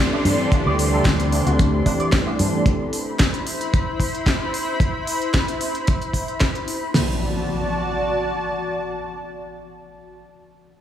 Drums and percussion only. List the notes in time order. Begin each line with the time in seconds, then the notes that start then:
0.25 open hi-hat
0.52 kick, closed hi-hat
0.79 open hi-hat
1.05 kick, snare, closed hi-hat
1.20 closed hi-hat
1.32 open hi-hat
1.47 closed hi-hat
1.59 kick, closed hi-hat
1.86 kick, open hi-hat
2.00 closed hi-hat
2.12 kick, snare, closed hi-hat
2.39 open hi-hat
2.66 kick, closed hi-hat
2.93 open hi-hat
3.19 kick, snare, closed hi-hat
3.34 closed hi-hat
3.47 open hi-hat
3.61 closed hi-hat
3.74 kick, closed hi-hat
4.00 kick, open hi-hat
4.15 closed hi-hat
4.26 kick, snare, closed hi-hat
4.54 open hi-hat
4.80 kick, closed hi-hat
5.07 open hi-hat
5.22 closed hi-hat
5.34 kick, snare, closed hi-hat
5.48 closed hi-hat
5.61 open hi-hat
5.75 closed hi-hat
5.87 kick, closed hi-hat
6.02 closed hi-hat
6.13 kick, open hi-hat
6.28 closed hi-hat
6.40 kick, snare, closed hi-hat
6.55 closed hi-hat
6.68 open hi-hat
6.94 snare, open hi-hat